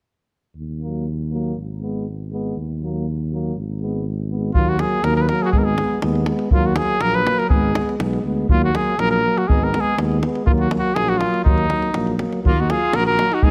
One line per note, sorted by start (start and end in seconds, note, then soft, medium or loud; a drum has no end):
0.57 1.54 D#2 medium
0.81 1.07 F#3 soft
0.81 1.05 A#3 soft
1.32 1.56 F#3 medium
1.32 1.56 A#3 soft
1.56 2.54 G#1 soft
1.82 2.06 G#3 soft
1.82 2.06 B3 soft
2.32 2.56 G#3 medium
2.32 2.56 B3 soft
2.56 3.53 D#2 medium
2.82 3.06 F#3 soft
2.82 3.06 A#3 soft
3.31 3.55 F#3 soft
3.31 3.56 A#3 soft
3.55 4.53 G#1 medium
3.81 4.05 G#3 soft
3.81 4.05 B3 soft
4.30 4.54 G#3 soft
4.30 4.54 B3 soft
4.54 4.82 D#2 medium
4.54 4.79 F#3 medium
4.54 4.78 A#3 soft
4.54 4.70 F4 medium
4.54 davul low medium
4.69 4.82 F#4 medium
4.79 5.02 F#3 medium
4.79 5.03 A#3 soft
4.79 5.05 G#4 medium
4.79 davul high medium
5.03 5.31 D#2 medium
5.03 5.27 F#3 medium
5.03 5.29 A#3 medium
5.03 5.15 A#4 medium
5.03 davul high medium
5.16 5.23 A#4 medium
5.16 davul high soft
5.21 5.29 B4 medium
5.28 5.53 F#3 medium
5.28 5.53 A#3 medium
5.28 5.43 A#4 medium
5.28 davul high soft
5.42 5.50 F#4 medium
5.42 5.47 G#4 medium
5.51 5.81 G#1 medium
5.51 5.77 G#3 medium
5.51 5.78 B3 medium
5.51 5.60 G#4 medium
5.51 davul low medium
5.58 5.66 A#4 medium
5.64 6.00 G#4 medium
5.78 6.02 G#3 medium
5.78 6.02 B3 soft
5.78 davul high medium
6.02 6.30 D#2 medium
6.02 6.26 G#3 medium
6.02 6.27 B3 medium
6.02 davul high medium
6.15 davul high soft
6.26 6.51 G#3 medium
6.26 6.51 B3 medium
6.26 davul high medium
6.39 davul high soft
6.51 6.79 D#2 medium
6.51 6.76 F#3 medium
6.51 6.76 A#3 medium
6.51 6.68 F4 medium
6.51 davul low medium
6.66 6.78 F#4 medium
6.76 7.01 F#3 medium
6.76 6.99 A#3 soft
6.76 7.03 G#4 medium
6.76 davul high medium
7.00 7.28 A#1 medium
7.00 7.26 F#3 medium
7.00 7.24 A#3 medium
7.00 7.16 A#4 medium
7.00 davul high medium
7.14 7.40 B4 medium
7.14 davul high soft
7.25 7.50 F#3 medium
7.25 7.49 A#3 medium
7.25 davul high medium
7.39 7.49 A#4 medium
7.39 davul high soft
7.49 7.78 G#1 medium
7.49 7.75 G#3 medium
7.49 7.74 B3 medium
7.49 7.96 G#4 medium
7.49 davul low medium
7.74 7.99 G#3 medium
7.74 7.99 B3 soft
7.74 davul high medium
7.89 davul high soft
7.99 8.22 B1 medium
7.99 8.25 G#3 medium
7.99 8.22 B3 medium
7.99 davul high medium
8.13 davul high soft
8.23 8.46 D2 medium
8.23 8.49 G#3 medium
8.23 8.48 B3 medium
8.49 8.76 D#2 medium
8.49 8.73 F#3 medium
8.49 8.73 A#3 medium
8.49 8.62 F4 medium
8.49 davul low medium
8.64 8.77 F#4 medium
8.74 8.98 F#3 soft
8.74 8.97 A#3 soft
8.74 9.01 G#4 medium
8.74 davul high medium
8.98 9.25 A#1 medium
8.98 9.22 F#3 medium
8.98 9.22 A#3 medium
8.98 9.10 A#4 medium
8.98 davul high medium
9.11 9.39 A#4 medium
9.11 davul high soft
9.24 9.47 F#3 medium
9.24 9.47 A#3 medium
9.38 9.49 F#4 medium
9.38 davul high soft
9.47 9.75 G#1 medium
9.47 9.72 G#3 medium
9.47 9.72 B3 medium
9.47 9.65 G#4 medium
9.47 davul low medium
9.64 9.82 A#4 medium
9.73 9.97 G#3 medium
9.73 9.96 B3 medium
9.73 davul high medium
9.80 9.97 G#4 medium
9.97 10.24 D#2 medium
9.97 10.22 G#3 medium
9.97 10.21 B3 medium
9.97 davul high medium
10.12 davul high soft
10.22 10.47 G#3 medium
10.22 10.45 B3 medium
10.22 davul high medium
10.35 davul high soft
10.46 10.74 D#2 medium
10.46 10.69 A#3 medium
10.46 10.52 F4 medium
10.46 davul low medium
10.50 10.71 F#3 medium
10.60 10.70 F#4 medium
10.70 10.96 F#3 medium
10.70 10.94 A#3 medium
10.70 davul high medium
10.79 10.96 F#4 medium
10.95 11.23 A#1 medium
10.95 11.20 F#3 medium
10.95 11.18 A#3 medium
10.95 11.10 G#4 medium
10.95 davul high medium
11.08 11.19 F#4 medium
11.08 davul high soft
11.18 11.44 A#3 medium
11.18 11.44 F4 medium
11.18 davul high medium
11.22 11.45 F#3 medium
11.34 davul high soft
11.44 11.72 D#2 medium
11.44 11.69 F#3 medium
11.44 11.69 A#3 medium
11.44 12.14 D#4 medium
11.44 davul low medium
11.58 davul high soft
11.69 11.93 F#3 medium
11.69 11.93 A#3 soft
11.69 davul high medium
11.82 davul high soft
11.94 12.22 A#1 medium
11.94 12.17 F#3 medium
11.94 12.17 A#3 medium
11.94 davul high medium
12.07 davul high soft
12.18 12.42 F#3 soft
12.18 12.42 A#3 soft
12.18 davul high medium
12.33 davul high soft
12.43 12.71 D#2 medium
12.43 12.53 F#3 medium
12.43 12.53 A#3 medium
12.43 12.62 A#3 medium
12.43 davul low medium
12.47 12.61 F4 medium
12.60 12.73 D#4 medium
12.60 12.72 F#4 medium
12.68 12.79 F#3 medium
12.68 12.78 A#3 soft
12.68 12.97 F4 medium
12.68 12.97 G#4 medium
12.68 davul high medium
12.93 13.20 A#1 medium
12.93 13.03 F#3 medium
12.93 13.03 A#3 soft
12.93 13.07 F#4 medium
12.93 13.06 A#4 medium
12.93 davul high medium
13.06 13.33 F#4 medium
13.06 13.35 A#4 medium
13.06 davul high soft
13.18 13.29 F#3 medium
13.18 13.27 A#3 medium
13.18 davul high medium
13.32 13.42 D#4 medium
13.32 13.45 F#4 medium
13.32 davul high soft
13.42 13.51 G#1 medium
13.42 13.51 G#3 medium
13.42 13.51 B3 medium
13.42 13.51 D#4 medium
13.42 13.51 G#4 medium
13.42 davul low medium